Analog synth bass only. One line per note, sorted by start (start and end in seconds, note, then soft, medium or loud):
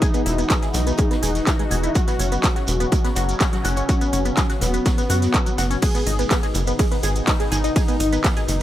0.26 0.44 E1 loud
0.74 0.93 B1 loud
1.23 1.41 E1 loud
1.71 1.90 E1 medium
2.19 2.38 F#1 loud
2.68 2.86 E1 loud
3.16 3.35 F#1 loud
3.65 3.83 F#1 loud
4.13 4.31 F#1 loud
4.61 4.80 E1 loud
5.10 5.28 F#2 medium
5.58 5.77 F#1 medium
6.07 6.25 G#1 loud
6.55 6.73 F#1 loud
7.03 7.22 G#1 loud
7.52 7.70 G#1 medium
8.00 8.19 G#1 loud
8.49 8.62 F#1 loud